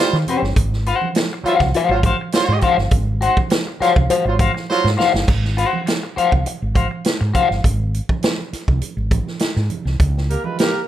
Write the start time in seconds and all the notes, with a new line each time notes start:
Already playing: G3 F4 C5
0.13 D#3, muted clean electric guitar stroke, snare, muted conga
0.27 C#4 G4 C5, closed hi-hat, high conga, low conga
0.42 G1, muted clean electric guitar stroke, snare
0.56 G#1, kick, closed hi-hat
0.73 snare
0.86 F#4 C5 F#5, closed hi-hat
1.02 high conga
1.15 muted clean electric guitar stroke, snare, closed hi-hat
1.33 muted clean electric guitar stroke
1.43 F#3 F4 F#4 C5, muted fretless electric bass stroke, closed hi-hat
1.47 C5 F5
1.60 C2, muted clean electric guitar stroke, kick, snare, high conga, low conga
1.74 F#4 C5 F5, muted fretless electric bass stroke, closed hi-hat
1.89 G#1 F#3 F4 C5, muted clean electric guitar stroke, muted conga
2.03 F#4 C5 F5, kick, closed hi-hat, high conga
2.21 muted clean electric guitar stroke
2.32 F#3 F4 C5, snare, closed hi-hat
2.48 G#2, muted clean electric guitar stroke, muted conga
2.61 F#4 C5 F5, kick, closed hi-hat, high conga, low conga
2.78 G1, muted clean electric guitar stroke, snare
2.91 G#1, kick, closed hi-hat, muted conga, low conga
3.08 muted conga
3.21 F#4 C5 F#5, closed hi-hat
3.37 kick, high conga
3.50 muted clean electric guitar stroke, snare, closed hi-hat
3.67 muted clean electric guitar stroke, muted conga
3.80 F#3 F4 F#4 C5 F5, muted fretless electric bass stroke, snare, closed hi-hat
3.96 C2, muted clean electric guitar stroke, kick, high conga, low conga
4.10 F#4 C5 F5, muted fretless electric bass stroke, closed hi-hat
4.25 G#1 F#3 F4 C5, muted clean electric guitar stroke, muted conga
4.39 F#4 C5 F5, kick, closed hi-hat, high conga
4.56 muted clean electric guitar stroke, snare
4.69 F#3 F4 C5, snare
4.84 G#2, muted clean electric guitar stroke, snare, muted conga
4.97 F#4 C5 F5, snare, high conga, low conga
5.14 G1, muted clean electric guitar stroke, snare
5.28 G#1, kick, crash, muted conga
5.45 snare
5.57 F#4 C5 F#5, closed hi-hat
5.73 high conga
5.86 muted clean electric guitar stroke, snare, closed hi-hat, muted conga
6.03 muted clean electric guitar stroke
6.16 F#4 C5 F5, muted fretless electric bass stroke, closed hi-hat
6.32 C2, muted clean electric guitar stroke, kick, high conga, low conga
6.46 muted fretless electric bass stroke, muted clean electric guitar stroke, closed hi-hat, muted conga
6.62 G#1
6.75 F#4 C5 F5, kick, closed hi-hat, high conga
6.91 muted clean electric guitar stroke
7.05 snare, closed hi-hat
7.21 G#2, muted clean electric guitar stroke
7.34 F#4 C5 F5, kick, closed hi-hat, high conga, low conga
7.50 G1, muted clean electric guitar stroke, snare
7.64 G#1, kick, closed hi-hat, muted conga
7.94 closed hi-hat
8.09 kick, high conga
8.23 snare, closed hi-hat
8.39 muted conga
8.53 muted fretless electric bass stroke, snare, closed hi-hat
8.68 C2, kick, high conga, low conga
8.82 muted fretless electric bass stroke, closed hi-hat, muted conga
8.97 G#1, muted conga
9.11 kick, closed hi-hat, high conga
9.27 snare
9.39 snare, closed hi-hat, muted conga
9.56 G#2, snare
9.70 closed hi-hat, high conga, low conga
9.85 C2, snare
10.00 C#2, kick, closed hi-hat, muted conga
10.15 snare, muted conga
10.29 A#3 G4 A#4, closed hi-hat
10.44 G#3 F4 B4, high conga
10.57 A#3 G4 A#4, snare, closed hi-hat